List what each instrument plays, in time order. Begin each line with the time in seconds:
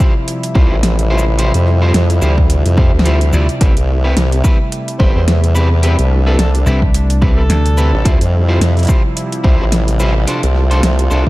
Already playing: analog synth pad C3 F3 G3 E4
0.00 clean electric guitar E4 F4 G4 C5, kick, cross-stick, shaker
0.28 closed hi-hat
0.43 closed hi-hat
0.55 wobble bass C2, clean electric guitar E4 F4 G4 C5, kick
0.71 wobble bass A1
0.83 snare, closed hi-hat
0.99 closed hi-hat
1.10 clean electric guitar E4 F4 G4 C5
1.19 shaker
1.38 clean electric guitar E4 F4 G4 C5, closed hi-hat
1.54 wobble bass F2, closed hi-hat
1.67 cross-stick, snare
1.82 clean electric guitar E4 F4 G4 C5, cross-stick
1.94 wobble bass F2, snare, closed hi-hat
2.10 closed hi-hat
2.22 wobble bass D2, clean electric guitar E4 F4 G4 C5, cross-stick, shaker
2.38 kick
2.50 closed hi-hat
2.66 wobble bass F2, closed hi-hat
2.77 clean electric guitar E4 F4 G4 C5, kick
2.93 wobble bass D2
2.99 snare
3.05 clean electric guitar E4 F4 G4 C5, closed hi-hat
3.21 closed hi-hat
3.33 slap bass D2, clean electric guitar E4 F4 G4 D5, shaker
3.49 closed hi-hat
3.61 wobble bass A1, analog synth pad A3, clean electric guitar C4 E4 G4 B4, kick, closed hi-hat
3.77 wobble bass C2, closed hi-hat
3.89 cross-stick
4.04 clean electric guitar C4 E4 G4 B4, cross-stick
4.17 wobble bass C2, snare, closed hi-hat
4.32 closed hi-hat
4.44 clean electric guitar C4 E4 G4 B4, kick, cross-stick, shaker
4.72 closed hi-hat
4.88 closed hi-hat
4.99 wobble bass G1, clean electric guitar C4 E4 G4 B4, harmonica C5, kick
5.15 wobble bass E2, harmonica C5
5.28 snare, closed hi-hat
5.44 closed hi-hat
5.55 clean electric guitar C4 E4 G4 B4, shaker
5.83 clean electric guitar C4 E4 G4 B4, analog synth pad D4, closed hi-hat
5.99 wobble bass C2, closed hi-hat
6.11 cross-stick
6.27 clean electric guitar C4 E4 G4 B4, harmonica A4, cross-stick
6.39 wobble bass C2, harmonica A4, snare, closed hi-hat
6.55 closed hi-hat
6.66 slap bass C2, clean electric guitar C4 E4 G4 B4, shaker
6.82 kick
6.94 closed hi-hat
7.10 closed hi-hat
7.22 clean electric guitar C4 E4 G4 B4, kick
7.37 harmonica A4
7.50 slap bass D2, snare, closed hi-hat
7.66 closed hi-hat
7.77 clean electric guitar C4 E4 G4 B4, shaker
7.94 wobble bass A1
8.05 wobble bass D2, analog synth pad C3 F3 G3 E4, clean electric guitar E4 F4 G4 C5, kick, closed hi-hat
8.21 wobble bass F2, closed hi-hat
8.41 cross-stick
8.49 clean electric guitar E4 F4 G4 C5, cross-stick
8.52 cross-stick
8.57 wobble bass F2, cross-stick
8.61 snare, closed hi-hat
8.77 closed hi-hat
8.79 closed hi-hat
8.83 closed hi-hat
8.85 closed hi-hat
8.87 clean electric guitar E4 F4 G4 C5, kick, cross-stick, closed hi-hat, shaker
9.17 closed hi-hat
9.32 closed hi-hat
9.44 wobble bass C2, clean electric guitar E4 F4 G4 C5, kick
9.60 wobble bass A1
9.72 snare, closed hi-hat
9.88 closed hi-hat
10.00 clean electric guitar E4 F4 G4 C5, shaker
10.27 analog synth pad A3 F4, clean electric guitar D4 F4 A4 C5, closed hi-hat
10.43 wobble bass C2, closed hi-hat
10.55 cross-stick, snare
10.71 clean electric guitar D4 F4 A4 C5, cross-stick, closed hi-hat
10.73 cross-stick
10.77 cross-stick
10.79 cross-stick
10.81 wobble bass C2, cross-stick, snare, closed hi-hat
10.99 closed hi-hat
11.11 wobble bass C2, clean electric guitar D4 F4 A4 C5, shaker